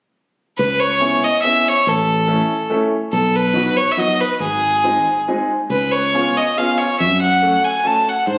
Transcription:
0.58 C#2 B4
0.80 C#5
1.00 B3 C#4 E4 G#4
1.24 D#5
1.42 B3 C#4 E4 G#4 E5
1.68 C#5
1.87 A1 A4
2.28 A3 C#4 E4 A4
2.70 A3 C#4 E4 A4
3.12 B1 A4
3.36 B4
3.54 F#3 B3 D#4 F#4
3.76 C#5
3.91 E5
3.97 F#3 B3 D#4 F#4 D#5
4.20 B4
4.40 G#1 G#4
4.84 G#3 C4 D#4 G#4
5.28 G#3 C4 D#4 G#4
5.70 C#2 B4
5.92 C#5
6.14 B3 C#4 F4 G#4
6.37 D#5
6.57 B3 C#4 F4 G#4 F5
6.78 C#5
6.99 F#2 E5
7.21 F#5
7.42 A3 C#4 F#4 A4
7.64 G#5
7.84 A3 C#4 F#4 A4 A5
8.09 F#5
8.27 G#2 C5

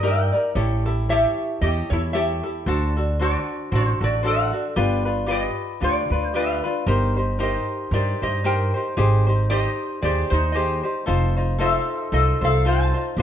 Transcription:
Already playing: G2
0.03 D#4 G4 A#4 D5
0.07 A#4 G5
0.32 D#4 A#4 D5
0.55 A1 E4 G4 A4 C#5
0.86 E4 G4 A4
1.09 E4 G4 A4 C#5 E5
1.61 E2 E4 G4 A4 C#5 D#5
1.90 E2 E4 G4 A4 C#5
2.13 E4 G4 A4 C#5 E5
2.43 E4 G4 A4
2.66 D2 D4 F#4 A4 C5
2.97 D4 F#4 A4
3.19 D4 F#4 A4 C5 D5
3.72 A1 D4 F#4 A4 C5
3.76 F#4
4.01 A1 D4 F#4 A4 D5
4.23 D4 F#4 A4 C5
4.28 F#5
4.52 D4 F#4 A4
4.76 G1 D4 F4 G4 B4
5.05 D4 F4 B4
5.26 F4 G4 B4
5.31 G4 D#5
5.81 D2 D4 F4 G4 B4 D5
6.10 D2 D4 F4 B4
6.34 D4 F4 G4 B4 F5
6.64 D4 F4 B4
6.87 G1 D#4 G4 A#4 C5
7.17 D#4 G4 C5
7.39 D#4 G4 A#4 C5
7.43 D#5
7.91 G2 D#4 G4 A#4 C5 D5
8.22 G2 D#4 G4 C5 D#5
8.44 D#4 G4 A#4 C5 G5
8.74 D#4 G4 C5
8.97 G#1 D#4 G4 G#4 C5
9.27 D#4 G4 C5
9.50 D#4 G4 C5 D#5
10.02 D#2 D#4 G4 G#4 C5 D5
10.30 D#2 D#4 G4 C5
10.52 D#4 G4 G#4 C5 D#5
10.83 D#4 G4 C5
11.06 F1 D#4 F4 A4 C5
11.36 D#4 F4 C5
11.58 D#4 F4 A4 C5 F5
12.03 D#5
12.12 C2 D#4 F4 A4 C5 D#5
12.41 C2 D#4 F4 A4 C5 F5
12.65 D#4 F4 A4 C5 A5
12.94 D#4 F4 C5
13.17 G1 D4 G4

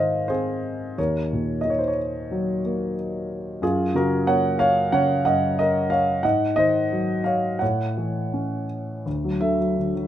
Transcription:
Already playing: G#2 D#3 C5 D#5 F5
0.28 C4 G#4 C5
0.98 D#2 A#4 C#5
1.33 A#2
1.61 D#5
1.65 D#3
1.70 C#5
1.79 C5
1.88 C#5
2.31 F#3
2.65 A#3
3.62 F#2 F4 G#4
3.94 C#3 F#4 A#4
4.27 A#3 C#5 F#5
4.59 C#5 F5
4.92 C#3 C#5 F#5
5.25 F#2 D#5 F#5
5.59 A#4 D#5
5.90 C#5 F5
6.23 G#2 D#5 F#5
6.56 D#3 C5 D#5
6.92 F#3
7.24 C#5 F5
7.59 A2 C#5 F#5
7.97 E3
8.33 C#4
9.06 D2
9.24 F#3
9.41 D3 A4 E5
9.60 F#3
9.77 D3
9.95 F#3

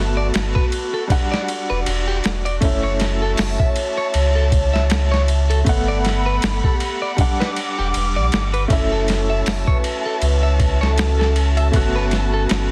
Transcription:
Already playing: G1 A3 B3 F#4 B4 A5
0.17 D5
0.34 G1, snare, ride
0.55 F#4 B4, kick
0.72 ride
0.94 A4
1.07 G3 D4 D5, kick, ride
1.12 F#5
1.32 D5, snare
1.48 ride
1.70 E1 B4
1.86 E1, ride
2.08 G4
2.24 E1, snare, ride
2.45 D5, ride
2.61 F#1 A3 C#4 C#5 E5 A5, kick, ride
2.65 E4
2.83 C#5
3.00 snare, ride
3.22 A4
3.37 F#1, snare, open hi-hat
3.59 C#5 E5, kick
3.76 ride
3.97 C#5
4.14 C#2 C#5, ride
4.35 A4
4.52 kick, ride
4.74 C#5 E5, snare
4.90 snare, ride
5.12 C#5, snare
5.28 ride
5.50 A4, ride
5.64 G1 A3 B3 A4 F#5 B5, kick, ride
5.69 F#5
5.88 D5
6.05 snare, ride
6.26 B4
6.42 G1, snare, ride
6.64 G4 A4, kick
6.80 ride
7.02 D5
7.16 G3 D4 D6, kick, ride
7.21 F#5
7.40 B4, snare
7.56 ride
7.79 E1 G4
7.94 E1, ride
8.16 B1 D5
8.32 G1, snare, ride
8.54 B4, ride
8.68 F#1 A3 C#4 F#4 A4 E5 A5, kick, ride
8.72 E4
8.92 A4
9.08 snare, ride
9.30 E5
9.46 F#1, snare, open hi-hat
9.67 B4 C#5, kick
9.84 ride
10.06 A4
10.22 C#2 B4, ride
10.43 E5
10.60 kick, ride
10.81 A4 C#5, snare
10.97 snare, ride
11.19 A4, snare
11.36 ride
11.57 E5, ride
11.71 G1 A3 B3 B4, kick, ride
11.76 F#4
11.96 B4
12.11 snare, ride
12.34 A4
12.49 G1, snare, ride

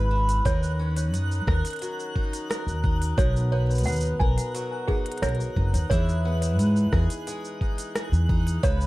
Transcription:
Already playing: G#1 C#3 G#3 B3 B4 F#6
0.11 E4
0.29 closed hi-hat, shaker
0.45 D#2 D#3 A#4 C#5, kick, closed hi-hat, shaker
0.63 shaker
0.79 C#4
0.96 closed hi-hat, shaker
1.13 F#2 D#4, closed hi-hat, shaker
1.32 shaker
1.47 D#2 A#4, kick, cross-stick
1.65 closed hi-hat, shaker
1.67 closed hi-hat
1.70 closed hi-hat
1.73 closed hi-hat
1.76 closed hi-hat
1.79 F#3, closed hi-hat
1.82 closed hi-hat, shaker
2.00 shaker
2.16 D#4, kick
2.33 closed hi-hat, shaker
2.50 A#4, cross-stick, closed hi-hat, shaker
2.67 D#2, shaker
2.84 D#4, kick
3.02 closed hi-hat, shaker
3.17 B1 B2 A#4 C#5, kick, closed hi-hat, shaker
3.36 shaker
3.52 B3 C#5
3.71 shaker
3.75 closed hi-hat, shaker
3.79 shaker
3.84 D#2 D#4 F#5, closed hi-hat, shaker
3.88 shaker
3.92 shaker
3.96 shaker
4.00 shaker
4.20 B1 A#4 G#5, kick
4.38 closed hi-hat, shaker
4.55 F#3, closed hi-hat, shaker
4.88 D#4 G#4, kick
5.06 closed hi-hat
5.12 closed hi-hat
5.18 closed hi-hat
5.22 B1 A#4 C#5, cross-stick, closed hi-hat, shaker
5.29 closed hi-hat
5.35 closed hi-hat
5.41 shaker
5.56 F#1 D#4, kick
5.74 D#2, closed hi-hat, shaker
5.90 E2 E3 G#4 C#5, kick, closed hi-hat, shaker
6.09 shaker
6.25 B3
6.42 closed hi-hat, shaker
6.59 G#2 D#4, closed hi-hat, shaker
6.76 shaker
6.93 E2 G#4, kick, cross-stick
7.10 closed hi-hat, shaker
7.27 G#3, closed hi-hat, shaker
7.45 shaker
7.61 D#4, kick
7.78 closed hi-hat, shaker
7.95 G#4, cross-stick, closed hi-hat, shaker
8.12 E2, shaker
8.29 D#4, kick
8.47 closed hi-hat, shaker
8.63 C#2 C#3 B4 C#5, kick, closed hi-hat, shaker
8.81 shaker

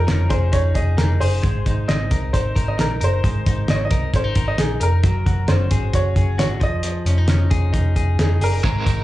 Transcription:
Already playing: F3 D#4 G#4 A#4
0.07 F1 C#4, snare, closed hi-hat
0.29 F1 G#4 C5, kick, closed hi-hat
0.52 F1 D#4 C#5, kick, closed hi-hat
0.75 F1 G#4 D#5, kick, closed hi-hat
0.97 F1 D#4 A#4, snare, closed hi-hat
1.20 F#1 G#4 C5, open hi-hat
1.43 G#1 G#3, kick, closed hi-hat
1.66 G#1 D#4, kick, closed hi-hat
1.88 G#1 C4 D#5, snare, closed hi-hat
2.11 C2 A#4, kick, closed hi-hat
2.33 G#1 D#4 C5, kick, closed hi-hat
2.56 G#1 A#4, kick, closed hi-hat
2.68 D#5
2.78 A#1 D#4 A#4, snare, closed hi-hat
3.01 F#1 A#4 C5, closed hi-hat
3.24 G#1 G#3, kick, closed hi-hat
3.46 G#1 D#4, kick, closed hi-hat
3.68 G#1 C4 D#5, snare, closed hi-hat
3.75 C#5
3.85 D#5
3.91 C2 A#4, kick, closed hi-hat
4.14 G#1 C#4 C5, kick, closed hi-hat
4.24 D#4
4.35 G#1 A#4, kick, closed hi-hat
4.48 D#5
4.58 A#1 D#4 G#4, snare, closed hi-hat
4.80 F1 A#4, closed hi-hat
5.03 F#1 F#3, kick, closed hi-hat
5.26 F#1 F#4, kick, closed hi-hat
5.48 F#1 C#4 C5, snare, closed hi-hat
5.71 G#1 G#4, kick, closed hi-hat
5.93 F#1 F#4 C#5, kick, closed hi-hat
6.16 F#1 G#4, kick, closed hi-hat
6.38 G#1 F#4 C#5, snare, closed hi-hat
6.60 F1 F3 D#5, kick, closed hi-hat
6.83 F3, closed hi-hat
7.06 F1 C#4, closed hi-hat
7.18 D#4
7.28 F1 C#4, snare, closed hi-hat
7.51 F1 G#4, kick, closed hi-hat
7.73 F1 D#4, kick, closed hi-hat
7.96 F1 G#4, kick, closed hi-hat
8.19 F1 D#4 G#4, snare, closed hi-hat
8.41 F#1 G#4 A#4, open hi-hat
8.63 G#1 G#3 C4 D#4 A#4, kick, closed hi-hat
8.86 G#1 C4 D#4 A#4, kick, closed hi-hat

